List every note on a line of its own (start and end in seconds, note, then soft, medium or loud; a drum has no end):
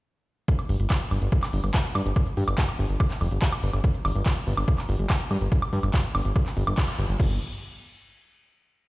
0.48 kick loud
0.48 closed hi-hat medium
0.59 closed hi-hat medium
0.59 high woodblock soft
0.69 0.76 G1 medium
0.69 open hi-hat loud
0.80 0.86 G1 medium
0.80 closed hi-hat medium
0.90 kick loud
0.90 clap loud
0.90 closed hi-hat medium
0.90 high woodblock medium
1.01 closed hi-hat medium
1.11 1.18 G1 medium
1.11 open hi-hat medium
1.11 high woodblock soft
1.22 1.28 G1 medium
1.22 closed hi-hat medium
1.32 kick loud
1.32 closed hi-hat medium
1.43 clap soft
1.43 closed hi-hat medium
1.43 high woodblock medium
1.53 1.60 G1 loud
1.53 open hi-hat loud
1.64 1.70 G1 medium
1.64 closed hi-hat medium
1.64 high woodblock soft
1.74 kick loud
1.74 clap loud
1.74 closed hi-hat medium
1.85 closed hi-hat medium
1.95 2.02 G2 medium
1.95 open hi-hat loud
1.95 high woodblock medium
2.06 2.12 G1 medium
2.06 closed hi-hat medium
2.16 kick loud
2.16 closed hi-hat medium
2.16 high woodblock soft
2.27 closed hi-hat medium
2.37 2.44 G2 medium
2.37 open hi-hat loud
2.48 2.54 G1 medium
2.48 closed hi-hat medium
2.48 high woodblock medium
2.58 kick loud
2.58 clap loud
2.58 closed hi-hat medium
2.69 closed hi-hat medium
2.69 high woodblock soft
2.79 2.86 G1 loud
2.79 open hi-hat loud
2.90 2.96 G1 medium
2.90 closed hi-hat medium
3.00 kick loud
3.00 closed hi-hat medium
3.00 high woodblock medium
3.11 clap soft
3.11 closed hi-hat medium
3.21 3.28 F1 loud
3.21 open hi-hat loud
3.21 high woodblock soft
3.32 3.38 G1 medium
3.32 closed hi-hat medium
3.42 kick loud
3.42 clap loud
3.42 closed hi-hat medium
3.52 closed hi-hat medium
3.52 high woodblock medium
3.63 3.70 G1 loud
3.63 open hi-hat loud
3.73 3.80 G1 medium
3.73 closed hi-hat medium
3.73 high woodblock soft
3.84 kick loud
3.84 closed hi-hat medium
3.94 closed hi-hat medium
4.05 4.12 G1 medium
4.05 open hi-hat loud
4.05 high woodblock medium
4.15 4.22 G1 medium
4.15 closed hi-hat medium
4.26 kick loud
4.26 clap loud
4.26 closed hi-hat medium
4.26 high woodblock soft
4.36 closed hi-hat medium
4.47 4.54 G1 loud
4.47 open hi-hat loud
4.57 4.64 G1 medium
4.57 closed hi-hat medium
4.57 high woodblock medium
4.68 kick loud
4.68 closed hi-hat medium
4.78 clap soft
4.78 closed hi-hat medium
4.78 high woodblock soft
4.89 4.96 G1 loud
4.89 open hi-hat loud
4.99 5.06 G1 medium
4.99 closed hi-hat medium
5.10 kick loud
5.10 clap loud
5.10 closed hi-hat medium
5.10 high woodblock medium
5.20 closed hi-hat medium
5.31 5.37 G2 loud
5.31 open hi-hat loud
5.31 high woodblock soft
5.41 5.48 G1 medium
5.41 closed hi-hat medium
5.52 kick loud
5.52 closed hi-hat medium
5.62 closed hi-hat medium
5.62 high woodblock medium
5.73 5.79 G2 medium
5.73 open hi-hat loud
5.83 5.90 G1 medium
5.83 closed hi-hat medium
5.83 high woodblock soft
5.94 kick loud
5.94 clap loud
5.94 closed hi-hat medium
6.04 closed hi-hat medium
6.15 6.21 G1 loud
6.15 open hi-hat loud
6.15 high woodblock medium
6.25 6.32 G1 medium
6.25 closed hi-hat medium
6.36 kick loud
6.36 closed hi-hat medium
6.36 high woodblock soft
6.46 clap soft
6.46 closed hi-hat medium
6.57 6.63 G1 medium
6.57 open hi-hat loud
6.67 6.74 G1 medium
6.67 closed hi-hat soft
6.67 high woodblock medium
6.78 kick loud
6.78 clap loud
6.78 closed hi-hat medium
6.88 closed hi-hat soft
6.88 high woodblock soft
6.99 7.05 G1 loud
6.99 open hi-hat medium
7.09 7.16 G1 medium
7.09 closed hi-hat medium
7.20 7.39 G1 loud
7.20 kick loud
7.20 crash medium